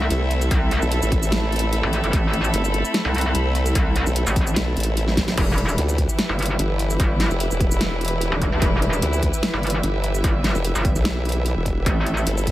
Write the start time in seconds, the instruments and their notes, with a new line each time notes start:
Already playing: supersaw synth A3 C4 E4, string section A4 E5 B5
0.10 wobble bass C2, closed hi-hat
0.31 closed hi-hat
0.41 closed hi-hat, shaker
0.51 wobble bass C2, kick, closed hi-hat
0.71 closed hi-hat
0.82 wobble bass B1, shaker
0.92 closed hi-hat
1.02 wobble bass A1, shaker
1.12 kick, closed hi-hat
1.23 shaker
1.32 snare, closed hi-hat
1.52 closed hi-hat
1.56 closed hi-hat
1.59 closed hi-hat
1.73 closed hi-hat
1.83 wobble bass A1
1.93 closed hi-hat
2.04 wobble bass G1, closed hi-hat
2.13 wobble bass A1, kick, closed hi-hat
2.33 closed hi-hat
2.44 shaker
2.54 wobble bass G1, closed hi-hat
2.64 shaker
2.74 closed hi-hat
2.85 shaker
2.94 snare, closed hi-hat
3.05 wobble bass C2
3.15 closed hi-hat
3.18 closed hi-hat
3.21 closed hi-hat
3.35 wobble bass C2, closed hi-hat
3.55 closed hi-hat
3.66 closed hi-hat, shaker
3.75 wobble bass C2, kick, closed hi-hat
3.96 closed hi-hat
4.06 wobble bass B1, shaker
4.16 closed hi-hat
4.27 wobble bass A1, shaker
4.36 kick, closed hi-hat
4.47 shaker
4.56 wobble bass B1, snare, closed hi-hat
4.77 wobble bass A1, closed hi-hat
4.80 closed hi-hat
4.83 closed hi-hat
4.97 closed hi-hat
5.08 snare
5.17 kick, snare, closed hi-hat
5.28 snare, closed hi-hat
5.37 wobble bass E1, supersaw synth E3 E4 G4 B4, string section E4, kick, closed hi-hat, crash
5.58 closed hi-hat
5.68 shaker
5.78 wobble bass D2, closed hi-hat
5.89 shaker
5.96 string section B4, kick, closed hi-hat
6.09 shaker
6.19 snare, closed hi-hat
6.27 wobble bass G1, string section E5
6.39 closed hi-hat
6.42 closed hi-hat
6.46 closed hi-hat
6.59 wobble bass G1, closed hi-hat
6.79 closed hi-hat
6.90 shaker
7.00 wobble bass G1, kick, closed hi-hat
7.20 snare, closed hi-hat
7.31 wobble bass F1, shaker
7.40 closed hi-hat
7.51 wobble bass E1, shaker
7.60 kick, closed hi-hat
7.71 shaker
7.81 snare, closed hi-hat
8.01 closed hi-hat
8.05 closed hi-hat
8.08 closed hi-hat
8.21 closed hi-hat
8.32 wobble bass E1
8.42 kick, closed hi-hat, zap
8.52 wobble bass D2
8.62 wobble bass E1, kick, closed hi-hat
8.82 closed hi-hat
8.93 shaker
9.02 wobble bass D2, closed hi-hat
9.13 shaker
9.23 kick, closed hi-hat
9.33 shaker
9.43 snare, closed hi-hat
9.54 wobble bass G1
9.63 closed hi-hat
9.67 closed hi-hat
9.70 closed hi-hat
9.83 wobble bass G1, closed hi-hat
10.04 closed hi-hat
10.14 shaker
10.24 wobble bass G1, kick, closed hi-hat
10.44 snare, closed hi-hat
10.55 wobble bass F1, shaker
10.65 closed hi-hat
10.75 wobble bass G1, shaker
10.85 kick, closed hi-hat
10.95 wobble bass B1, shaker
11.05 snare, closed hi-hat
11.25 closed hi-hat
11.29 closed hi-hat
11.32 closed hi-hat
11.46 closed hi-hat
11.56 wobble bass E1
11.66 kick, closed hi-hat
11.86 wobble bass A1, supersaw synth A3 C4, string section A4, kick, closed hi-hat
12.06 closed hi-hat
12.17 shaker
12.22 string section B5
12.27 wobble bass G1, closed hi-hat
12.37 shaker
12.47 kick, closed hi-hat